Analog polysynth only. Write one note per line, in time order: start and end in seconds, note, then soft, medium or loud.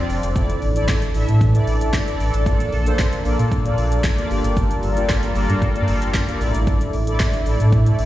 0.00 0.29 C4 medium
0.00 0.29 D4 medium
0.00 0.29 F4 medium
0.00 0.29 A4 medium
0.00 0.29 D5 loud
0.35 0.68 E4 medium
0.35 0.68 A4 medium
0.35 0.68 D5 loud
0.76 1.08 E4 medium
0.76 1.08 A4 medium
0.76 1.08 D5 loud
1.15 1.47 E4 medium
1.15 1.47 A4 medium
1.15 1.47 E5 medium
1.54 1.97 E4 medium
1.54 1.97 A4 medium
1.54 1.97 D5 loud
2.07 2.39 E4 medium
2.07 2.39 A4 medium
2.07 2.39 D5 loud
2.46 2.79 A#3 medium
2.46 2.79 D4 medium
2.46 2.79 F4 medium
2.46 2.79 A4 medium
2.46 2.79 D5 medium
2.86 3.18 A#3 medium
2.86 3.18 D4 medium
2.86 3.18 F4 medium
2.86 3.18 A4 medium
2.86 3.18 C5 loud
3.25 3.58 A#3 medium
3.25 3.58 D4 medium
3.25 3.58 F4 medium
3.25 3.58 A4 medium
3.25 3.58 D5 medium
3.65 4.08 A#3 medium
3.65 4.08 D4 medium
3.65 4.08 F4 medium
3.65 4.08 A4 medium
3.65 4.08 D5 loud
4.18 4.29 A#3 medium
4.18 4.29 D4 medium
4.18 4.29 F4 medium
4.18 4.31 A4 medium
4.18 4.30 D5 loud
4.30 4.84 A#3 medium
4.30 4.84 D4 medium
4.30 4.84 F4 medium
4.30 4.84 G4 medium
4.30 4.84 D5 loud
4.97 5.29 A#3 medium
4.97 5.29 D4 medium
4.97 5.29 F4 medium
4.97 5.29 G4 medium
4.97 5.29 D5 loud
5.36 5.68 A#3 medium
5.36 5.68 D4 medium
5.36 5.68 F4 medium
5.36 5.68 G4 medium
5.36 5.68 D5 medium
5.76 6.18 A#3 medium
5.76 6.18 D4 medium
5.76 6.18 F4 medium
5.76 6.18 G4 medium
5.76 6.18 D5 loud
6.28 6.41 A#3 medium
6.28 6.41 D4 medium
6.28 6.41 F4 medium
6.28 6.41 G4 medium
6.28 6.40 D5 loud
6.41 6.94 E4 medium
6.41 6.95 A4 medium
6.41 6.95 D5 loud
7.07 7.39 E4 medium
7.07 7.39 A4 medium
7.07 7.39 D5 loud
7.46 7.79 E4 medium
7.46 7.79 A4 medium
7.46 7.79 D5 medium
7.86 8.05 E4 medium
7.86 8.05 A4 medium
7.86 8.05 D5 medium